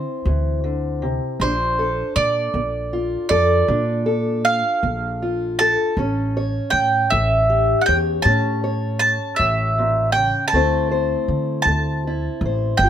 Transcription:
0.00 1.41 C4 medium
0.00 1.41 E4 medium
0.00 1.36 C5 medium
0.25 1.17 D2 medium
0.25 0.63 E3 medium
0.64 1.02 D3 medium
1.02 1.40 C3 medium
1.40 2.01 A#1 medium
1.40 2.10 A#2 medium
1.40 3.68 D4 medium
1.40 2.13 C5 medium
1.79 3.30 A4 medium
2.16 2.47 A#2 medium
2.16 3.26 D5 medium
2.54 3.15 A#1 medium
2.54 3.23 A#3 medium
2.93 5.21 F4 medium
3.29 3.61 F2 medium
3.29 4.06 A4 medium
3.29 4.40 D5 medium
3.68 4.37 A#2 medium
3.68 4.60 A#2 medium
3.68 5.93 D4 medium
4.06 5.60 A4 medium
4.45 5.58 F5 medium
4.83 5.74 A#1 medium
4.83 5.51 A#3 medium
5.22 5.93 F4 soft
5.59 6.36 A4 medium
5.59 6.69 A5 loud
5.97 6.58 A1 medium
5.97 6.66 A2 medium
5.97 8.25 C#4 medium
6.37 7.88 C#5 medium
6.70 7.03 A2 medium
6.70 7.11 G5 medium
7.10 7.72 A1 medium
7.10 7.80 A3 medium
7.10 7.82 E5 medium
7.50 10.49 G4 medium
7.81 7.85 F#5 medium
7.86 8.18 E2 medium
7.86 8.63 C#5 medium
7.86 7.96 G5 medium
8.22 8.94 A2 medium
8.22 9.16 A2 loud
8.22 10.49 C#4 medium
8.22 8.98 A5 medium
8.64 10.49 C#5 medium
8.99 9.39 A5 medium
9.36 10.30 A1 medium
9.36 9.77 A2 medium
9.36 10.10 E5 medium
9.78 10.15 A#2 medium
10.12 10.53 C#3 medium
10.12 10.47 G5 medium
10.48 11.60 A5 medium
10.53 11.14 D2 medium
10.53 11.22 D3 medium
10.53 11.68 A3 medium
10.53 12.81 C4 medium
10.53 12.06 E4 medium
10.53 10.90 C5 medium
10.91 12.43 C5 medium
11.28 11.59 D3 medium
11.62 12.26 D2 medium
11.62 12.77 A5 medium
11.68 12.36 A3 medium
12.07 12.82 E4 medium
12.41 12.72 A1 medium
12.45 12.77 C5 medium
12.77 12.89 G1 loud
12.77 12.89 G5 medium
12.83 12.89 G3 medium
12.83 12.89 F4 medium

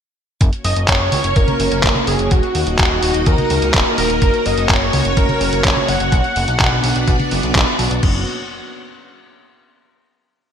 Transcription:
0.41 0.50 F#1 loud
0.41 2.29 A#3 medium
0.41 2.29 C#4 medium
0.41 7.99 F#4 medium
0.41 2.30 C#5 medium
0.41 kick loud
0.41 closed hi-hat medium
0.53 closed hi-hat soft
0.65 0.74 F#1 medium
0.65 0.88 D#5 medium
0.65 open hi-hat loud
0.76 0.86 F#1 medium
0.76 closed hi-hat medium
0.88 0.98 F#1 loud
0.88 1.38 C#5 loud
0.88 kick loud
0.88 clap loud
0.88 closed hi-hat medium
1.00 1.10 F#1 medium
1.12 1.22 C#2 loud
1.12 open hi-hat loud
1.12 high conga medium
1.24 1.34 F#1 medium
1.24 closed hi-hat medium
1.36 1.46 F#1 loud
1.36 2.07 A#4 loud
1.36 kick loud
1.36 closed hi-hat medium
1.48 closed hi-hat soft
1.48 high conga medium
1.60 1.69 F#1 loud
1.60 open hi-hat loud
1.72 1.81 F#1 medium
1.72 closed hi-hat medium
1.83 1.93 F#1 loud
1.83 kick loud
1.83 clap loud
1.83 closed hi-hat medium
1.95 high conga medium
2.07 2.17 F#1 loud
2.07 2.33 G#4 medium
2.07 open hi-hat loud
2.19 2.29 F#1 medium
2.19 closed hi-hat medium
2.31 2.41 D#1 loud
2.31 6.08 A#3 medium
2.31 4.20 D#4 medium
2.31 2.78 F#4 loud
2.31 4.20 D#5 loud
2.31 kick loud
2.31 closed hi-hat medium
2.43 closed hi-hat soft
2.55 2.65 D#2 medium
2.55 open hi-hat loud
2.67 2.76 D#1 medium
2.67 closed hi-hat medium
2.79 2.88 D#1 loud
2.79 3.28 F#4 medium
2.79 kick loud
2.79 clap loud
2.79 closed hi-hat medium
2.91 3.00 D#1 medium
3.03 3.12 D#1 loud
3.03 open hi-hat loud
3.14 3.24 D#1 medium
3.14 closed hi-hat medium
3.26 3.36 D#2 loud
3.26 3.97 A#4 loud
3.26 kick loud
3.26 closed hi-hat medium
3.38 closed hi-hat soft
3.38 high conga medium
3.50 3.60 C#2 loud
3.50 open hi-hat loud
3.62 3.72 C#2 medium
3.62 closed hi-hat medium
3.74 3.84 D#1 loud
3.74 kick loud
3.74 clap loud
3.74 closed hi-hat medium
3.98 4.07 D#1 loud
3.98 4.47 A#4 loud
3.98 open hi-hat loud
4.10 4.19 D#1 medium
4.10 closed hi-hat medium
4.22 4.31 F#1 loud
4.22 6.11 C#4 medium
4.22 6.11 C#5 loud
4.22 kick loud
4.22 closed hi-hat medium
4.34 closed hi-hat soft
4.46 4.55 F#1 medium
4.46 4.71 D#5 loud
4.46 open hi-hat loud
4.58 4.67 F#1 medium
4.58 closed hi-hat medium
4.69 4.79 F#1 loud
4.69 5.17 C#5 loud
4.69 kick loud
4.69 clap loud
4.69 closed hi-hat medium
4.81 4.91 F#1 medium
4.93 5.03 C#2 loud
4.93 open hi-hat loud
4.93 high conga medium
5.05 5.15 F#1 medium
5.05 closed hi-hat medium
5.17 5.26 F#1 loud
5.17 5.61 A#4 loud
5.17 kick loud
5.17 closed hi-hat medium
5.29 closed hi-hat soft
5.29 high conga medium
5.41 5.50 F#1 loud
5.41 open hi-hat loud
5.53 5.62 F#1 medium
5.53 closed hi-hat medium
5.65 5.74 F#1 loud
5.65 5.90 C#5 loud
5.65 kick loud
5.65 clap loud
5.65 closed hi-hat medium
5.76 high conga medium
5.88 5.98 F#1 loud
5.88 7.55 F#5 loud
5.88 open hi-hat loud
6.00 6.10 F#1 medium
6.00 closed hi-hat medium
6.12 6.22 B1 loud
6.12 8.01 B3 medium
6.12 8.01 D4 medium
6.12 8.01 D5 loud
6.12 kick loud
6.12 closed hi-hat medium
6.24 closed hi-hat soft
6.36 6.46 F#1 medium
6.36 open hi-hat loud
6.48 6.58 B1 medium
6.48 closed hi-hat medium
6.60 6.69 B1 loud
6.60 kick loud
6.60 clap loud
6.60 closed hi-hat medium
6.72 6.81 B1 medium
6.84 6.93 B1 loud
6.84 open hi-hat loud
6.96 7.05 B1 medium
6.96 closed hi-hat medium
7.08 7.17 B1 loud
7.08 kick loud
7.08 closed hi-hat medium
7.20 closed hi-hat soft
7.20 high conga medium
7.31 7.41 F#1 loud
7.31 open hi-hat loud
7.43 7.53 B1 medium
7.43 closed hi-hat medium
7.55 7.65 B1 loud
7.55 kick loud
7.55 clap loud
7.55 closed hi-hat medium
7.79 7.88 B1 medium
7.79 open hi-hat loud
7.91 8.00 B1 medium
7.91 closed hi-hat medium
8.03 8.25 F#1 loud
8.03 kick loud
8.03 crash medium

